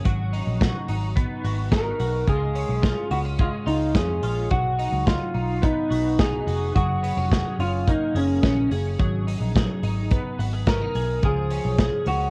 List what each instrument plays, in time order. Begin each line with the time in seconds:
Already playing: clean electric guitar A#3 C#4
0.05 picked electric bass G#1, clean electric guitar F#3 F#4, kick, closed hi-hat
0.33 clean electric guitar D#4, open hi-hat
0.47 picked electric bass A#1
0.61 clean electric guitar F#4, kick, snare, closed hi-hat
0.88 picked electric bass G#1, clean electric guitar D#4, open hi-hat
1.16 clean electric guitar B3, kick, closed hi-hat
1.44 picked electric bass G#1, clean electric guitar F#4, open hi-hat
1.72 clean electric guitar D#4 A#4, kick, snare, closed hi-hat
2.00 picked electric bass B1, clean electric guitar F#4, open hi-hat
2.27 picked electric bass C#2, clean electric guitar G#3 F4 G#4, kick, closed hi-hat
2.55 clean electric guitar C#4, open hi-hat
2.69 picked electric bass B1
2.82 clean electric guitar F4, kick, snare, closed hi-hat
3.11 picked electric bass C#2, clean electric guitar B3 F#4, open hi-hat
3.25 clean electric guitar C#4
3.39 clean electric guitar G#3 F4, kick, closed hi-hat
3.66 picked electric bass C#2, clean electric guitar D#4 F4, open hi-hat
3.95 picked electric bass F2, clean electric guitar C#4 G#4, kick, snare, closed hi-hat
4.23 picked electric bass A#1, clean electric guitar F4, open hi-hat
4.51 picked electric bass B1, clean electric guitar F#3 F#4, kick, closed hi-hat
4.79 clean electric guitar D#4, open hi-hat
4.92 picked electric bass C#2
5.07 clean electric guitar F4, kick, snare, closed hi-hat
5.34 picked electric bass B1, clean electric guitar D#4, open hi-hat
5.62 clean electric guitar B3 D#4, kick, closed hi-hat
5.90 picked electric bass B1, clean electric guitar F#4, open hi-hat
6.19 clean electric guitar D#4 G#4, kick, snare, closed hi-hat
6.47 picked electric bass F1, clean electric guitar F#4, open hi-hat
6.75 picked electric bass F#1, clean electric guitar F#3 F#4 G#4, kick, closed hi-hat
7.03 clean electric guitar B3, open hi-hat
7.17 picked electric bass F1, clean electric guitar C#4
7.31 clean electric guitar G#4, kick, snare, closed hi-hat
7.59 picked electric bass F#1, clean electric guitar C#4 F4, open hi-hat
7.88 clean electric guitar A#3 D#4, kick, closed hi-hat
8.15 picked electric bass F#1, clean electric guitar C#4 G#4, open hi-hat
8.43 picked electric bass A#1, clean electric guitar C#4, kick, snare, closed hi-hat
8.71 picked electric bass F#1, clean electric guitar G#4, open hi-hat
8.99 picked electric bass G#1, clean electric guitar F#3 G#4, kick, closed hi-hat
9.27 clean electric guitar D#4, open hi-hat
9.40 picked electric bass A#1
9.55 clean electric guitar G#4, kick, snare, closed hi-hat
9.83 picked electric bass G#1, clean electric guitar D#4, open hi-hat
10.11 clean electric guitar B3, kick, closed hi-hat
10.39 picked electric bass G#1, clean electric guitar F#4, open hi-hat
10.53 clean electric guitar G#4
10.67 clean electric guitar C#4 A#4, kick, snare, closed hi-hat
10.82 clean electric guitar D#4
10.95 picked electric bass B1, clean electric guitar G#4, open hi-hat
11.23 picked electric bass C#2, clean electric guitar F3 G#4, kick, closed hi-hat
11.51 clean electric guitar C#4, open hi-hat
11.65 picked electric bass B1
11.79 clean electric guitar G#4, kick, snare, closed hi-hat
12.06 picked electric bass C#2, clean electric guitar C#4 F#4, open hi-hat